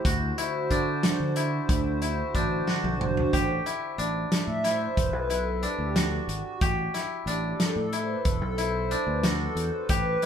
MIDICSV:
0, 0, Header, 1, 5, 480
1, 0, Start_track
1, 0, Tempo, 656455
1, 34, Time_signature, 5, 3, 24, 8
1, 7500, End_track
2, 0, Start_track
2, 0, Title_t, "Analog synth pad"
2, 0, Program_c, 0, 89
2, 20, Note_on_c, 0, 50, 73
2, 28, Note_on_c, 0, 62, 66
2, 36, Note_on_c, 0, 66, 73
2, 44, Note_on_c, 0, 72, 82
2, 2401, Note_off_c, 0, 50, 0
2, 2405, Note_off_c, 0, 62, 0
2, 2408, Note_off_c, 0, 66, 0
2, 2413, Note_off_c, 0, 72, 0
2, 3162, Note_on_c, 0, 76, 113
2, 3398, Note_on_c, 0, 72, 97
2, 3407, Note_off_c, 0, 76, 0
2, 3642, Note_on_c, 0, 71, 95
2, 3645, Note_off_c, 0, 72, 0
2, 3887, Note_off_c, 0, 71, 0
2, 3887, Note_on_c, 0, 69, 86
2, 4126, Note_on_c, 0, 67, 80
2, 4130, Note_off_c, 0, 69, 0
2, 4364, Note_on_c, 0, 66, 78
2, 4369, Note_off_c, 0, 67, 0
2, 4812, Note_off_c, 0, 66, 0
2, 5313, Note_on_c, 0, 67, 77
2, 5432, Note_on_c, 0, 69, 84
2, 5440, Note_off_c, 0, 67, 0
2, 5785, Note_on_c, 0, 72, 103
2, 5806, Note_off_c, 0, 69, 0
2, 5907, Note_on_c, 0, 71, 81
2, 5916, Note_off_c, 0, 72, 0
2, 6022, Note_on_c, 0, 69, 93
2, 6037, Note_off_c, 0, 71, 0
2, 6262, Note_on_c, 0, 72, 88
2, 6278, Note_off_c, 0, 69, 0
2, 6501, Note_on_c, 0, 74, 94
2, 6517, Note_off_c, 0, 72, 0
2, 6620, Note_on_c, 0, 71, 88
2, 6634, Note_off_c, 0, 74, 0
2, 6740, Note_on_c, 0, 69, 100
2, 6753, Note_off_c, 0, 71, 0
2, 6982, Note_on_c, 0, 72, 95
2, 6997, Note_off_c, 0, 69, 0
2, 7101, Note_on_c, 0, 71, 78
2, 7114, Note_off_c, 0, 72, 0
2, 7500, Note_off_c, 0, 71, 0
2, 7500, End_track
3, 0, Start_track
3, 0, Title_t, "Koto"
3, 0, Program_c, 1, 107
3, 0, Note_on_c, 1, 60, 77
3, 0, Note_on_c, 1, 64, 77
3, 35, Note_on_c, 1, 66, 86
3, 275, Note_off_c, 1, 64, 0
3, 278, Note_on_c, 1, 64, 73
3, 517, Note_on_c, 1, 62, 80
3, 994, Note_off_c, 1, 64, 0
3, 997, Note_on_c, 1, 64, 71
3, 1216, Note_off_c, 1, 60, 0
3, 1473, Note_off_c, 1, 64, 0
3, 1476, Note_on_c, 1, 64, 63
3, 1580, Note_off_c, 1, 66, 0
3, 1714, Note_off_c, 1, 62, 0
3, 1717, Note_on_c, 1, 62, 72
3, 1955, Note_on_c, 1, 66, 72
3, 2435, Note_on_c, 1, 67, 81
3, 2479, Note_off_c, 1, 66, 0
3, 2674, Note_off_c, 1, 64, 0
3, 2676, Note_on_c, 1, 64, 60
3, 2909, Note_off_c, 1, 62, 0
3, 2912, Note_on_c, 1, 62, 69
3, 3391, Note_off_c, 1, 64, 0
3, 3394, Note_on_c, 1, 64, 69
3, 3870, Note_off_c, 1, 64, 0
3, 3873, Note_on_c, 1, 64, 60
3, 3927, Note_off_c, 1, 67, 0
3, 4111, Note_off_c, 1, 62, 0
3, 4114, Note_on_c, 1, 62, 64
3, 4357, Note_on_c, 1, 66, 71
3, 4835, Note_on_c, 1, 67, 83
3, 4879, Note_off_c, 1, 66, 0
3, 5072, Note_off_c, 1, 64, 0
3, 5075, Note_on_c, 1, 64, 69
3, 5313, Note_off_c, 1, 62, 0
3, 5316, Note_on_c, 1, 62, 67
3, 5795, Note_off_c, 1, 64, 0
3, 5798, Note_on_c, 1, 64, 72
3, 6272, Note_off_c, 1, 64, 0
3, 6275, Note_on_c, 1, 64, 72
3, 6327, Note_off_c, 1, 67, 0
3, 6512, Note_off_c, 1, 62, 0
3, 6515, Note_on_c, 1, 62, 69
3, 6756, Note_on_c, 1, 66, 74
3, 7234, Note_on_c, 1, 67, 76
3, 7278, Note_off_c, 1, 66, 0
3, 7476, Note_off_c, 1, 64, 0
3, 7500, Note_off_c, 1, 62, 0
3, 7500, Note_off_c, 1, 67, 0
3, 7500, End_track
4, 0, Start_track
4, 0, Title_t, "Fingered electric bass"
4, 0, Program_c, 2, 33
4, 35, Note_on_c, 2, 38, 100
4, 226, Note_off_c, 2, 38, 0
4, 516, Note_on_c, 2, 50, 96
4, 802, Note_off_c, 2, 50, 0
4, 877, Note_on_c, 2, 50, 81
4, 1163, Note_off_c, 2, 50, 0
4, 1236, Note_on_c, 2, 38, 92
4, 1617, Note_off_c, 2, 38, 0
4, 1716, Note_on_c, 2, 33, 91
4, 1907, Note_off_c, 2, 33, 0
4, 2074, Note_on_c, 2, 35, 81
4, 2361, Note_off_c, 2, 35, 0
4, 2438, Note_on_c, 2, 33, 92
4, 2628, Note_off_c, 2, 33, 0
4, 2912, Note_on_c, 2, 33, 81
4, 3105, Note_off_c, 2, 33, 0
4, 3270, Note_on_c, 2, 45, 81
4, 3559, Note_off_c, 2, 45, 0
4, 3635, Note_on_c, 2, 28, 82
4, 3751, Note_off_c, 2, 28, 0
4, 3751, Note_on_c, 2, 35, 85
4, 4135, Note_off_c, 2, 35, 0
4, 4230, Note_on_c, 2, 38, 84
4, 4519, Note_off_c, 2, 38, 0
4, 4588, Note_on_c, 2, 32, 76
4, 4688, Note_off_c, 2, 32, 0
4, 4836, Note_on_c, 2, 33, 87
4, 5028, Note_off_c, 2, 33, 0
4, 5307, Note_on_c, 2, 33, 90
4, 5502, Note_off_c, 2, 33, 0
4, 5672, Note_on_c, 2, 45, 81
4, 5961, Note_off_c, 2, 45, 0
4, 6035, Note_on_c, 2, 28, 93
4, 6153, Note_off_c, 2, 28, 0
4, 6153, Note_on_c, 2, 35, 90
4, 6536, Note_off_c, 2, 35, 0
4, 6630, Note_on_c, 2, 38, 96
4, 6919, Note_off_c, 2, 38, 0
4, 6985, Note_on_c, 2, 40, 76
4, 7086, Note_off_c, 2, 40, 0
4, 7234, Note_on_c, 2, 33, 91
4, 7426, Note_off_c, 2, 33, 0
4, 7500, End_track
5, 0, Start_track
5, 0, Title_t, "Drums"
5, 36, Note_on_c, 9, 36, 94
5, 40, Note_on_c, 9, 42, 77
5, 109, Note_off_c, 9, 36, 0
5, 113, Note_off_c, 9, 42, 0
5, 279, Note_on_c, 9, 42, 67
5, 352, Note_off_c, 9, 42, 0
5, 516, Note_on_c, 9, 36, 64
5, 517, Note_on_c, 9, 42, 57
5, 589, Note_off_c, 9, 36, 0
5, 590, Note_off_c, 9, 42, 0
5, 756, Note_on_c, 9, 38, 105
5, 756, Note_on_c, 9, 42, 77
5, 829, Note_off_c, 9, 38, 0
5, 829, Note_off_c, 9, 42, 0
5, 994, Note_on_c, 9, 42, 57
5, 1067, Note_off_c, 9, 42, 0
5, 1236, Note_on_c, 9, 36, 104
5, 1237, Note_on_c, 9, 42, 78
5, 1309, Note_off_c, 9, 36, 0
5, 1310, Note_off_c, 9, 42, 0
5, 1475, Note_on_c, 9, 42, 56
5, 1548, Note_off_c, 9, 42, 0
5, 1715, Note_on_c, 9, 36, 66
5, 1717, Note_on_c, 9, 42, 54
5, 1789, Note_off_c, 9, 36, 0
5, 1790, Note_off_c, 9, 42, 0
5, 1956, Note_on_c, 9, 38, 59
5, 2029, Note_off_c, 9, 38, 0
5, 2079, Note_on_c, 9, 48, 65
5, 2152, Note_off_c, 9, 48, 0
5, 2201, Note_on_c, 9, 45, 88
5, 2274, Note_off_c, 9, 45, 0
5, 2320, Note_on_c, 9, 43, 83
5, 2394, Note_off_c, 9, 43, 0
5, 2437, Note_on_c, 9, 36, 92
5, 2441, Note_on_c, 9, 42, 75
5, 2510, Note_off_c, 9, 36, 0
5, 2514, Note_off_c, 9, 42, 0
5, 2679, Note_on_c, 9, 42, 57
5, 2752, Note_off_c, 9, 42, 0
5, 2919, Note_on_c, 9, 42, 57
5, 2992, Note_off_c, 9, 42, 0
5, 3157, Note_on_c, 9, 38, 97
5, 3157, Note_on_c, 9, 42, 79
5, 3230, Note_off_c, 9, 38, 0
5, 3230, Note_off_c, 9, 42, 0
5, 3398, Note_on_c, 9, 38, 30
5, 3398, Note_on_c, 9, 42, 60
5, 3471, Note_off_c, 9, 38, 0
5, 3471, Note_off_c, 9, 42, 0
5, 3636, Note_on_c, 9, 36, 89
5, 3639, Note_on_c, 9, 42, 72
5, 3710, Note_off_c, 9, 36, 0
5, 3712, Note_off_c, 9, 42, 0
5, 3877, Note_on_c, 9, 42, 56
5, 3950, Note_off_c, 9, 42, 0
5, 4115, Note_on_c, 9, 42, 50
5, 4188, Note_off_c, 9, 42, 0
5, 4357, Note_on_c, 9, 38, 99
5, 4357, Note_on_c, 9, 42, 75
5, 4430, Note_off_c, 9, 38, 0
5, 4430, Note_off_c, 9, 42, 0
5, 4598, Note_on_c, 9, 42, 50
5, 4671, Note_off_c, 9, 42, 0
5, 4835, Note_on_c, 9, 42, 71
5, 4836, Note_on_c, 9, 36, 104
5, 4908, Note_off_c, 9, 42, 0
5, 4909, Note_off_c, 9, 36, 0
5, 5079, Note_on_c, 9, 38, 28
5, 5079, Note_on_c, 9, 42, 50
5, 5152, Note_off_c, 9, 38, 0
5, 5152, Note_off_c, 9, 42, 0
5, 5318, Note_on_c, 9, 42, 55
5, 5391, Note_off_c, 9, 42, 0
5, 5556, Note_on_c, 9, 38, 94
5, 5556, Note_on_c, 9, 42, 72
5, 5629, Note_off_c, 9, 38, 0
5, 5629, Note_off_c, 9, 42, 0
5, 5795, Note_on_c, 9, 42, 55
5, 5868, Note_off_c, 9, 42, 0
5, 6033, Note_on_c, 9, 42, 68
5, 6035, Note_on_c, 9, 36, 96
5, 6106, Note_off_c, 9, 42, 0
5, 6108, Note_off_c, 9, 36, 0
5, 6274, Note_on_c, 9, 42, 50
5, 6347, Note_off_c, 9, 42, 0
5, 6516, Note_on_c, 9, 42, 51
5, 6589, Note_off_c, 9, 42, 0
5, 6753, Note_on_c, 9, 38, 88
5, 6753, Note_on_c, 9, 42, 68
5, 6826, Note_off_c, 9, 38, 0
5, 6826, Note_off_c, 9, 42, 0
5, 6996, Note_on_c, 9, 42, 53
5, 7069, Note_off_c, 9, 42, 0
5, 7232, Note_on_c, 9, 42, 82
5, 7234, Note_on_c, 9, 36, 93
5, 7305, Note_off_c, 9, 42, 0
5, 7307, Note_off_c, 9, 36, 0
5, 7475, Note_on_c, 9, 38, 28
5, 7475, Note_on_c, 9, 42, 58
5, 7500, Note_off_c, 9, 38, 0
5, 7500, Note_off_c, 9, 42, 0
5, 7500, End_track
0, 0, End_of_file